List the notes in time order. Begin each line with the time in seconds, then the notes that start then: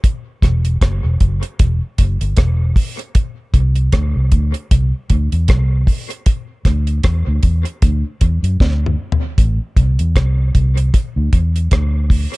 0.04 kick, closed hi-hat
0.42 E1, kick, cross-stick, closed hi-hat
0.65 closed hi-hat
0.81 F#1, kick, cross-stick, closed hi-hat
1.04 E1
1.20 F#1, kick, closed hi-hat
1.43 closed hi-hat
1.59 E1, kick, closed hi-hat
1.98 F#1, kick, closed hi-hat
2.21 G1, closed hi-hat
2.37 E1, kick, cross-stick, closed hi-hat
2.76 kick, open hi-hat
2.99 closed hi-hat
3.15 kick, closed hi-hat
3.54 C2, kick, closed hi-hat
3.76 closed hi-hat
3.92 D2, kick, cross-stick, closed hi-hat
4.16 C2
4.32 D2, kick, closed hi-hat
4.54 closed hi-hat
4.71 C2, kick, closed hi-hat
5.10 D2, kick, closed hi-hat
5.32 E2, closed hi-hat
5.48 C2, kick, cross-stick, closed hi-hat
5.87 kick, open hi-hat
6.10 closed hi-hat
6.26 kick, closed hi-hat
6.65 D2, kick, cross-stick, closed hi-hat
6.87 closed hi-hat
7.04 E2, kick, cross-stick, closed hi-hat
7.27 D2
7.43 E2, kick, closed hi-hat
7.65 closed hi-hat
7.82 D2, kick, closed hi-hat
8.21 E2, kick, closed hi-hat
8.43 F#2, closed hi-hat
8.60 D2, kick, snare
8.86 mid tom
9.12 floor tom
9.38 A1, kick, closed hi-hat
9.77 C2, kick, closed hi-hat
9.99 E2, closed hi-hat
10.16 C2, kick, cross-stick, closed hi-hat
10.55 C2, kick, closed hi-hat
10.77 closed hi-hat
10.94 kick, closed hi-hat
11.16 D2
11.33 E2, kick, closed hi-hat
11.56 closed hi-hat
11.71 D2, kick, cross-stick, closed hi-hat
12.10 kick, open hi-hat
12.34 closed hi-hat